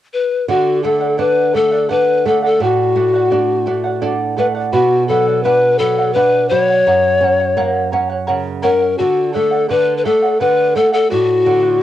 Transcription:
0.13 0.46 B4 medium
0.48 2.57 D3 medium
0.48 0.84 F#4 medium
0.48 0.82 A4 medium
0.48 0.83 D5 medium
0.48 0.84 F#5 medium
0.83 1.18 A3 soft
0.83 1.19 A4 medium
0.83 1.01 A4 soft
0.83 1.01 D5 medium
0.83 0.99 F#5 soft
1.01 1.17 D5 soft
1.01 1.17 F#5 soft
1.17 1.53 D4 soft
1.17 1.52 A4 medium
1.17 1.57 B4 medium
1.17 1.53 D5 medium
1.17 1.53 F#5 medium
1.53 1.89 A3 soft
1.53 1.71 A4 medium
1.53 1.90 A4 medium
1.53 1.72 D5 soft
1.53 1.70 F#5 medium
1.72 1.88 D5 soft
1.72 1.88 F#5 soft
1.89 2.25 D4 soft
1.89 2.24 A4 medium
1.89 2.29 B4 medium
1.89 2.25 D5 medium
1.89 2.25 F#5 medium
2.25 2.60 A3 soft
2.25 2.43 A4 medium
2.25 2.44 A4 medium
2.25 2.43 D5 medium
2.25 2.41 F#5 medium
2.43 2.64 A4 medium
2.43 2.60 D5 soft
2.43 2.60 F#5 soft
2.60 4.69 A2 medium
2.60 4.12 F#4 medium
2.60 2.95 A4 medium
2.60 2.96 D5 medium
2.60 2.96 F#5 medium
2.96 3.30 A3 soft
2.96 3.14 A4 medium
2.96 3.14 D5 medium
2.96 3.13 F#5 soft
3.14 3.30 D5 soft
3.14 3.31 F#5 soft
3.30 3.66 D4 soft
3.30 3.64 A4 medium
3.30 3.65 D5 medium
3.30 3.66 F#5 medium
3.66 4.01 A3 soft
3.66 3.84 A4 medium
3.66 3.84 D5 medium
3.66 3.83 F#5 medium
3.84 4.01 D5 soft
3.84 4.01 F#5 soft
4.01 4.36 D4 soft
4.01 4.35 A4 medium
4.01 4.36 D5 medium
4.01 4.37 F#5 medium
4.37 4.72 A3 soft
4.37 4.55 A4 medium
4.37 4.46 B4 medium
4.37 4.55 D5 medium
4.37 4.54 F#5 medium
4.55 4.72 D5 soft
4.55 4.73 F#5 medium
4.73 6.81 B2 medium
4.73 5.06 F#4 medium
4.73 5.08 B4 medium
4.73 5.08 D5 medium
4.73 5.09 F#5 medium
5.08 5.44 F#3 soft
5.08 5.41 A4 medium
5.08 5.26 B4 soft
5.08 5.27 D5 medium
5.08 5.26 F#5 medium
5.27 5.44 D5 soft
5.27 5.44 F#5 soft
5.43 5.79 D4 medium
5.43 5.80 B4 loud
5.43 5.78 B4 medium
5.43 5.79 D5 medium
5.43 5.80 F#5 medium
5.79 6.14 F#3 soft
5.79 6.15 A4 medium
5.79 5.97 B4 medium
5.79 5.98 D5 medium
5.79 5.97 F#5 medium
5.98 6.15 D5 soft
5.98 6.15 F#5 soft
6.14 6.50 D4 soft
6.14 6.49 B4 medium
6.14 6.50 B4 medium
6.14 6.51 D5 medium
6.14 6.51 F#5 medium
6.49 6.85 F#3 medium
6.49 6.68 B4 medium
6.49 7.87 C#5 medium
6.49 6.68 D5 medium
6.49 6.67 F#5 medium
6.69 6.86 D5 soft
6.69 6.86 F#5 soft
6.87 8.94 F#2 medium
6.87 7.21 A#4 medium
6.87 7.21 C#5 medium
6.87 7.22 F#5 medium
7.21 7.55 C#4 soft
7.21 7.39 A#4 soft
7.21 7.40 C#5 medium
7.21 7.38 F#5 soft
7.39 7.56 C#5 soft
7.39 7.56 F#5 medium
7.57 7.91 A#3 medium
7.57 7.91 A#4 medium
7.57 7.91 C#5 medium
7.57 7.92 F#5 medium
7.92 8.27 C#4 medium
7.92 8.10 A#4 medium
7.92 8.10 C#5 medium
7.92 8.08 F#5 medium
8.10 8.26 C#5 soft
8.10 8.27 F#5 medium
8.27 8.62 C#3 soft
8.27 8.61 A#4 medium
8.27 8.62 C#5 medium
8.27 8.63 F#5 medium
8.62 8.98 C#4 medium
8.62 8.80 A#4 medium
8.62 8.96 A#4 medium
8.62 8.80 C#5 medium
8.62 8.79 F#5 medium
8.80 8.99 C#5 soft
8.80 8.98 F#5 soft
8.98 9.69 D3 medium
8.98 9.31 F#4 medium
8.98 9.31 A4 medium
8.98 9.32 D5 medium
8.98 9.33 F#5 medium
9.33 9.69 A3 soft
9.33 9.51 A4 soft
9.33 9.66 A4 medium
9.33 9.51 D5 medium
9.33 9.50 F#5 medium
9.51 9.68 D5 soft
9.51 9.68 F#5 soft
9.69 10.04 D3 medium
9.69 10.03 A4 medium
9.69 9.96 B4 loud
9.69 10.04 D5 medium
9.69 10.04 F#5 medium
9.97 10.06 B4 medium
10.05 10.39 A3 soft
10.05 10.22 A4 soft
10.05 10.40 A4 medium
10.05 10.22 D5 medium
10.05 10.21 F#5 medium
10.22 10.40 D5 soft
10.22 10.40 F#5 soft
10.40 10.75 D3 soft
10.40 10.73 A4 medium
10.40 10.78 B4 medium
10.40 10.74 D5 medium
10.40 10.75 F#5 medium
10.75 11.10 A3 soft
10.75 10.92 A4 medium
10.75 10.93 A4 medium
10.75 10.92 D5 medium
10.75 10.91 F#5 medium
10.92 11.09 A4 medium
10.92 11.09 D5 soft
10.92 11.09 F#5 soft
11.10 11.83 A2 medium
11.10 11.83 F#4 medium
11.10 11.44 A4 medium
11.10 11.45 D5 medium
11.10 11.46 F#5 medium
11.46 11.80 D3 medium
11.46 11.63 A4 soft
11.46 11.63 D5 medium
11.46 11.62 F#5 medium
11.63 11.80 D5 soft
11.63 11.80 F#5 soft

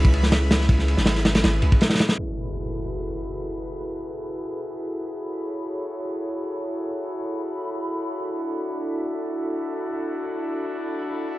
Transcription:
0.00 0.68 C#2 medium
0.00 2.15 C#4 medium
0.00 2.16 E4 medium
0.00 2.16 G#4 medium
0.00 2.16 B4 loud
0.00 2.17 B5 medium
0.05 kick loud
0.14 ride medium
0.23 snare medium
0.32 snare loud
0.32 ride medium
0.51 snare loud
0.51 ride medium
0.61 snare soft
0.69 0.96 C#2 loud
0.69 kick loud
0.69 ride medium
0.79 snare soft
0.88 ride medium
0.97 1.42 G#1 medium
0.97 snare medium
1.06 snare loud
1.06 ride medium
1.15 snare soft
1.25 snare medium
1.25 ride medium
1.35 snare loud
1.35 ride medium
1.44 1.62 G#1 medium
1.44 snare loud
1.44 ride medium
1.62 1.71 C#2 loud
1.62 ride medium
1.72 kick medium
1.81 snare loud
1.81 ride medium
1.90 snare medium
1.90 ride medium
1.95 snare medium
1.95 ride medium
1.99 snare loud
1.99 ride medium
2.09 snare loud
2.09 ride medium
2.18 11.38 E4 medium
2.18 11.38 F#4 medium
2.18 8.11 G#4 medium
2.18 11.38 A4 medium
2.18 5.14 B4 medium
2.18 11.38 B5 medium
2.18 impact medium
5.17 8.12 C#5 medium
8.15 11.38 D4 medium
11.13 riser medium

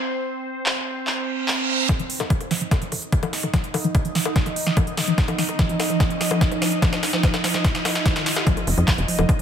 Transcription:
0.00 1.90 C4 medium
0.00 1.90 C5 medium
0.66 clap loud
1.07 clap medium
1.07 reverse cymbal medium
1.48 clap loud
1.89 1.96 F3 medium
1.89 8.45 D#4 medium
1.89 8.45 D#5 medium
1.89 kick loud
1.89 snare soft
1.89 closed hi-hat medium
1.89 riser medium
1.89 high bongo soft
1.99 2.06 F3 medium
1.99 closed hi-hat soft
2.10 open hi-hat loud
2.20 2.27 F3 medium
2.20 snare soft
2.20 closed hi-hat soft
2.20 high bongo medium
2.30 2.37 F3 medium
2.30 kick loud
2.30 closed hi-hat loud
2.41 closed hi-hat soft
2.41 high bongo soft
2.51 2.57 F3 medium
2.51 snare medium
2.51 open hi-hat loud
2.61 2.68 F3 medium
2.61 closed hi-hat soft
2.71 kick loud
2.71 snare medium
2.71 closed hi-hat loud
2.71 high bongo medium
2.82 2.88 F3 medium
2.82 closed hi-hat soft
2.92 2.98 F3 medium
2.92 open hi-hat loud
2.92 high bongo soft
3.02 closed hi-hat soft
3.12 3.19 F3 medium
3.12 kick loud
3.12 closed hi-hat medium
3.23 3.29 F3 medium
3.23 closed hi-hat soft
3.23 high bongo medium
3.33 snare medium
3.33 open hi-hat loud
3.43 3.50 F3 medium
3.43 closed hi-hat soft
3.43 high bongo soft
3.54 3.60 F3 medium
3.54 kick loud
3.54 snare medium
3.54 closed hi-hat loud
3.64 closed hi-hat soft
3.74 3.81 F3 medium
3.74 open hi-hat loud
3.74 high bongo medium
3.84 3.91 F3 medium
3.84 closed hi-hat soft
3.95 kick loud
3.95 closed hi-hat medium
3.95 high bongo soft
4.05 4.11 F3 medium
4.05 closed hi-hat soft
4.15 4.22 F3 medium
4.15 snare medium
4.15 open hi-hat loud
4.25 closed hi-hat soft
4.25 high bongo medium
4.36 4.42 F3 medium
4.36 kick loud
4.36 snare medium
4.36 closed hi-hat medium
4.46 4.53 F3 medium
4.46 closed hi-hat soft
4.46 high bongo soft
4.56 open hi-hat loud
4.67 4.73 F3 medium
4.67 snare medium
4.67 closed hi-hat soft
4.77 4.83 F3 medium
4.77 kick loud
4.77 closed hi-hat medium
4.77 high bongo medium
4.87 closed hi-hat soft
4.97 5.04 F3 medium
4.97 snare medium
4.97 open hi-hat loud
4.97 high bongo soft
5.08 5.14 F3 medium
5.08 closed hi-hat soft
5.18 kick loud
5.18 snare medium
5.18 closed hi-hat medium
5.28 5.35 F3 medium
5.28 closed hi-hat soft
5.28 high bongo medium
5.38 5.45 F3 medium
5.38 snare medium
5.38 open hi-hat loud
5.49 closed hi-hat soft
5.49 high bongo soft
5.59 5.66 F3 medium
5.59 kick loud
5.59 snare medium
5.59 closed hi-hat medium
5.69 5.76 F3 medium
5.69 closed hi-hat soft
5.80 snare medium
5.80 open hi-hat loud
5.80 high bongo medium
5.90 5.96 F3 medium
5.90 closed hi-hat soft
6.00 6.07 F3 medium
6.00 kick loud
6.00 snare medium
6.00 closed hi-hat medium
6.00 high bongo soft
6.10 closed hi-hat soft
6.21 6.27 F3 medium
6.21 snare medium
6.21 open hi-hat loud
6.31 6.38 F3 medium
6.31 closed hi-hat soft
6.31 high bongo medium
6.41 kick loud
6.41 snare medium
6.41 closed hi-hat medium
6.52 6.58 F3 medium
6.52 closed hi-hat soft
6.52 high bongo soft
6.62 6.68 F3 medium
6.62 snare medium
6.62 open hi-hat loud
6.72 closed hi-hat soft
6.82 6.89 F3 medium
6.82 kick loud
6.82 snare medium
6.82 closed hi-hat medium
6.82 high bongo medium
6.93 6.99 F3 medium
6.93 snare medium
6.93 closed hi-hat soft
7.03 snare loud
7.03 open hi-hat loud
7.03 high bongo soft
7.13 7.20 F3 medium
7.13 snare medium
7.23 7.30 F3 medium
7.23 kick loud
7.23 snare medium
7.23 closed hi-hat medium
7.34 snare medium
7.34 closed hi-hat soft
7.34 high bongo medium
7.44 7.51 F3 medium
7.44 snare loud
7.44 open hi-hat loud
7.54 7.61 F3 medium
7.54 snare medium
7.54 closed hi-hat soft
7.54 high bongo soft
7.65 kick loud
7.65 snare loud
7.65 closed hi-hat medium
7.75 7.81 F3 medium
7.75 snare medium
7.75 closed hi-hat soft
7.85 7.95 F3 medium
7.85 snare loud
7.85 open hi-hat loud
7.85 high bongo medium
7.95 snare loud
7.95 closed hi-hat soft
8.06 8.12 F3 medium
8.06 kick loud
8.06 snare loud
8.06 closed hi-hat medium
8.06 high bongo soft
8.16 8.26 D#3 medium
8.16 snare loud
8.16 closed hi-hat soft
8.26 snare loud
8.26 open hi-hat loud
8.36 8.46 G4 medium
8.36 snare loud
8.36 high bongo medium
8.47 8.53 F3 medium
8.47 9.42 D#4 medium
8.47 9.42 D#5 medium
8.47 kick loud
8.47 closed hi-hat loud
8.47 impact medium
8.57 8.64 F3 medium
8.57 closed hi-hat soft
8.57 high bongo soft
8.67 8.74 F1 loud
8.67 open hi-hat loud
8.78 8.84 F2 medium
8.78 8.84 F3 medium
8.78 closed hi-hat soft
8.88 kick loud
8.88 clap loud
8.88 closed hi-hat loud
8.98 9.05 F1 medium
8.98 closed hi-hat soft
9.08 9.15 F3 medium
9.08 open hi-hat loud
9.19 9.26 F1 medium
9.19 9.25 F3 medium
9.19 closed hi-hat soft
9.19 high bongo medium
9.29 kick loud
9.29 closed hi-hat loud

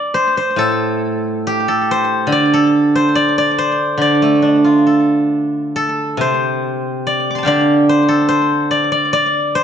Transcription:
0.00 1.55 D5 medium
0.14 0.37 C5 medium
0.37 1.91 C5 medium
0.56 2.28 A2 soft
0.56 1.68 A4 medium
1.47 3.82 G4 medium
1.68 2.53 A4 medium
1.91 2.95 C5 medium
2.27 3.96 D3 soft
2.32 3.15 D5 medium
2.54 4.73 A4 medium
2.95 3.58 C5 medium
3.15 3.38 D5 medium
3.38 4.01 D5 medium
3.58 5.57 C5 medium
3.98 6.63 D3 soft
3.98 4.46 D5 medium
4.22 5.99 A3 soft
4.42 6.21 D4 soft
4.46 4.58 D#5 medium
4.58 4.72 D5 medium
4.64 6.43 F4 soft
4.72 4.84 D#5 medium
4.84 5.75 A4 soft
4.84 5.86 D5 medium
5.76 7.95 A4 medium
6.17 7.47 C3 soft
6.17 7.89 C5 medium
7.07 7.47 D5 medium
7.31 8.52 D6 soft
7.35 8.83 A5 soft
7.35 8.66 C6 soft
7.43 9.64 D3 soft
7.43 9.11 F5 soft
7.43 8.98 G5 soft
7.47 8.70 D5 medium
7.89 8.28 C5 medium
8.08 9.64 A4 medium
8.29 9.55 C5 medium
8.71 8.91 D5 medium
8.92 9.13 D5 medium
9.13 9.64 D5 medium
9.55 9.64 C5 medium

